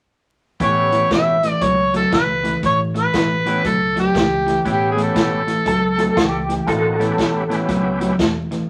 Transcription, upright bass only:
0.60 A1
1.11 A1
1.61 C#2
2.12 C#2
2.63 A1
3.14 A1
3.65 C#2
4.15 C#2
4.65 A1
5.16 A1
5.66 C#2
6.17 C#2
6.67 A1
7.19 A1
7.69 C#2
8.19 E2

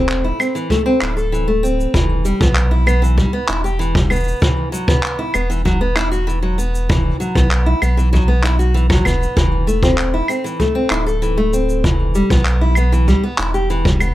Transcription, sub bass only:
Already playing: E1
1.02 D1
1.94 E1
2.41 B1
3.49 E1
5.35 E1
7.36 B1
7.82 B1
8.90 A1
9.06 E1
9.37 E1
10.91 D1
11.84 E1
12.30 B1
13.39 E1

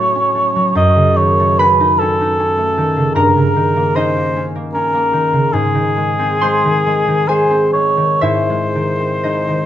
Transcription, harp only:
Already playing: A2 F#3 A3 C#4 F#4 C#5 F#5 C#6
0.15 C#4
0.35 A3
0.56 F#3
0.75 F#2
0.96 C#3
1.17 D#3
1.40 A3
1.59 C#4 B4 B5
1.80 D#4
2.01 C#4
2.21 D#4
2.39 C#4
2.57 A3
2.78 D#3
2.96 C#3
3.15 G2 A#4 A#5
3.37 C#3
3.56 D#3
3.76 A#3
3.96 C#4 D#4 D#5
4.17 A#3
4.36 C#4
4.55 A#3
4.75 C#4
4.94 A#3
5.13 D#3
5.33 C#3
5.53 G#2
5.75 D#3
5.96 G#3
6.19 C4
6.41 G#3 C5 C6
6.65 D#3
6.87 G#3
7.08 D#3
7.28 G#3 G#4 G#5
7.51 C4
7.74 G#3
7.97 D#3
8.21 G#2 E4 E5
8.50 G#3
8.75 D#3
9.00 C4
9.23 G#3 D#4 D#5
9.48 D#3

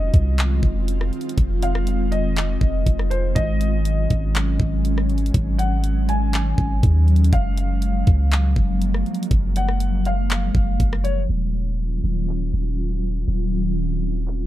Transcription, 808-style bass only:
Already playing: F1
0.14 C2
0.63 F1
1.38 F1
2.61 F1
2.86 F1
3.36 G#1
4.11 G#1
4.60 G#1
5.34 G#1
6.58 G#1
6.83 D#2
7.33 F#1
8.07 C#2
8.56 F#1
9.31 F#1
10.55 F#1
10.80 F#1
11.29 D#1
12.04 D#1
12.53 D#1
13.28 D#1

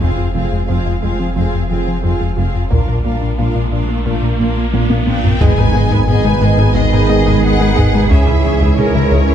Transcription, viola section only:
0.00 C4 F4
0.34 C4 F4
0.69 C4 F4
1.03 C4 F4
1.36 C4 F4
1.69 C4 F4
2.04 C4 F4
2.37 C4 F4
2.71 D4 F4
3.05 D4 F4
3.39 D4 F4
3.72 D4 F4
4.07 D4 F4
4.39 D4 F4
4.72 D4 F4
5.06 D4 F4
5.40 B3 G#4
5.57 D#4 B4
5.74 B3 G#4
5.90 D#4 B4
6.07 B3 G#4
6.24 D#4 B4
6.40 B3 G#4
6.58 D#4 B4
6.75 B3 G#4
6.93 D#4 B4
7.09 B3 G#4
7.26 D#4 B4
7.43 B3 G#4
7.59 D#4 B4
7.77 B3 G#4
7.94 D#4 B4
8.10 C#4 G#4
8.26 E4
8.44 C#4 G#4
8.61 E4
8.77 C#4 G#4
8.95 E4
9.11 C#4 G#4
9.28 E4

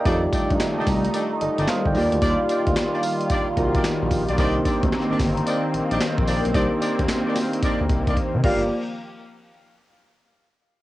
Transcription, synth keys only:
Already playing: D#5
0.00 A#4
0.05 A3 D#4 F4 G4 C#5
0.14 D5
1.42 A4 D#5
1.69 C5 F5
1.87 D5 G5
1.95 A#3 D#4 F4 G4 D5
3.58 A#3 D#4 F4 F#4 A#4
3.65 G4
4.38 A#3 D4 D#4 G4 C5
6.54 A#3 D4 D#4 G4 C5
8.44 A#3 F4 G4 D5

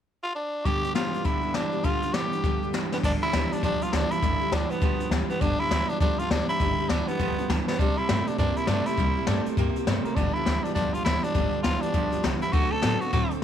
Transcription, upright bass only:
3.04 G1
3.22 muted upright bass stroke
3.33 D2
3.51 muted upright bass stroke
3.63 D2
3.81 muted upright bass stroke
3.93 D2
4.12 muted upright bass stroke
4.22 G1
4.41 muted upright bass stroke
4.52 D2
4.70 muted upright bass stroke
4.82 D2
4.99 muted upright bass stroke
5.10 D2
5.29 muted upright bass stroke
5.41 G1
5.59 muted upright bass stroke
5.70 D2
5.88 muted upright bass stroke
6.01 D2
6.18 muted upright bass stroke
6.30 D2
6.49 muted upright bass stroke
6.60 G1
6.78 muted upright bass stroke
6.89 D2
7.07 muted upright bass stroke
7.20 D2
7.38 muted upright bass stroke
7.49 D2
7.68 muted upright bass stroke
7.79 C2
7.98 muted upright bass stroke
8.09 G2
8.28 muted upright bass stroke
8.38 G2
8.57 muted upright bass stroke
8.68 G2
8.87 muted upright bass stroke
8.97 C2
9.16 muted upright bass stroke
9.28 G2
9.46 muted upright bass stroke
9.57 G2
9.75 muted upright bass stroke
9.87 G2
10.04 muted upright bass stroke
10.17 G1
10.35 muted upright bass stroke
10.46 D2
10.65 muted upright bass stroke
10.76 D2
10.94 muted upright bass stroke
11.06 D2
11.24 muted upright bass stroke
11.35 G1
11.53 muted upright bass stroke
11.64 D2
11.83 muted upright bass stroke
11.94 D2
12.13 muted upright bass stroke
12.24 C2
12.43 muted upright bass stroke
12.54 D2
12.72 muted upright bass stroke
12.84 A2
13.02 muted upright bass stroke
13.13 A2
13.31 muted upright bass stroke

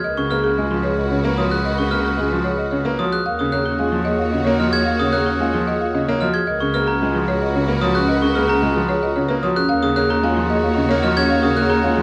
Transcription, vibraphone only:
0.05 A#4
0.32 G#4
0.45 C#4
0.59 F4
0.86 G#4
1.00 F4
1.39 F#4
1.66 A#4
1.93 G#4
2.06 C#4
2.20 F4
2.47 G#4
2.60 F4
3.01 F#4
3.28 A#4
3.54 G#4
3.67 C#4
3.81 F4
4.07 G#4
4.20 F4
4.61 F#4
4.87 A#4
5.14 G#4
5.28 C#4
5.41 F4
5.68 G#4
5.82 F4
6.21 F#4
6.48 A#4
6.75 G#4
6.88 C#4
7.03 F4
7.29 G#4
7.43 F4
7.83 F#4
7.96 C#4
8.10 A#4
8.36 G#4
8.50 C#4
8.63 F4
8.90 G#4
9.04 F4
9.43 F#4
9.57 C#4
9.70 A#4
9.97 G#4
10.10 C#4
10.23 F4
10.50 G#4
10.64 F4
11.04 F#4
11.17 C#4
11.30 A#4
11.57 G#4
11.71 C#4
11.84 F4

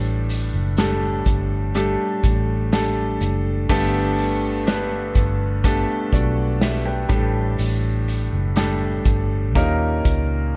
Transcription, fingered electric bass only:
Already playing: A1
0.54 F#1
1.26 G1
2.24 A1
3.21 F#1
3.70 G1
5.16 G1
6.13 B1
7.10 A1
7.59 A1
8.33 F#1
9.06 G1
9.56 D#2
10.06 C#2

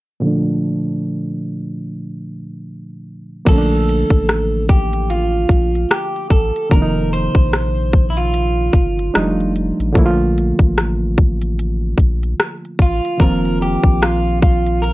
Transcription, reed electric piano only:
0.20 A#2 D3 F3
0.25 A3 D4
3.45 D3 F3 A#3
3.50 A3 C#4
3.58 D4
6.69 C3 D#3 F3
6.74 A#3 D4
6.82 D#4
9.14 F3 G3 G#3 D4 D#4
9.23 A3
9.93 D3 F3 A3
9.97 A#3 E4
10.06 F4
13.18 D#3 F3 A#3
13.23 C4 F4

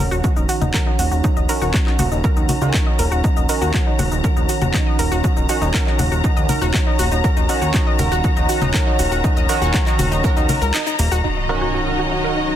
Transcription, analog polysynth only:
Already playing: D#3 C#4 F#4
1.49 D#3 C#4 F#4
2.62 D#3 C#4 F#4
3.49 D#3 C#4 F#4
5.49 D#3 C#4 F#4
7.49 D#3 C#4 F#4
9.49 D#3 C#4 F#4
11.49 D#3 C#4 F#4

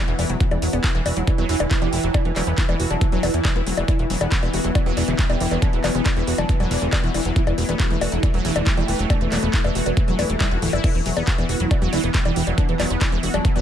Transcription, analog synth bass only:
0.08 E1
0.19 E1
0.30 E1
0.51 E1
0.62 E1
0.73 E1
0.95 E1
1.06 E1
1.17 E1
1.38 E1
1.49 E1
1.60 E1
1.82 E1
1.93 E1
2.04 E1
2.25 E1
2.36 E1
2.47 E1
2.69 E1
2.80 E1
2.90 E1
3.12 E1
3.23 E1
3.34 E2
3.56 E1
3.67 E1
3.77 E1
3.99 E1
4.10 E1
4.21 E1
4.43 E1
4.54 E1
4.64 E1
4.86 E1
4.97 E1
5.08 E1
5.30 E1
5.41 E1
5.51 E1
5.73 E1
5.84 E1
5.95 E1
6.17 E1
6.27 E1
6.38 E1
6.60 E1
6.71 E1
6.82 E1
7.03 E1
7.14 E1
7.25 E1
7.47 E1
7.58 E1
7.69 E1
7.90 E1
8.01 E1
8.12 E1
8.34 E1
8.45 E1
8.56 E1
8.77 E1
8.88 E1
8.99 E1
9.21 E1
9.32 E1
9.43 E1
9.64 E1
9.75 E1
9.86 E1
10.08 E1
10.19 E1
10.30 E1
10.51 E1
10.62 D1
10.73 F#1
10.95 E1
11.06 E1
11.17 E1
11.38 E1
11.49 E1
11.60 E1
11.82 E1
11.93 E1
12.04 E1
12.25 E1
12.36 E1
12.47 E1
12.69 E1
12.80 E1
12.90 E1
13.12 E1
13.23 E1
13.34 E1
13.56 E1

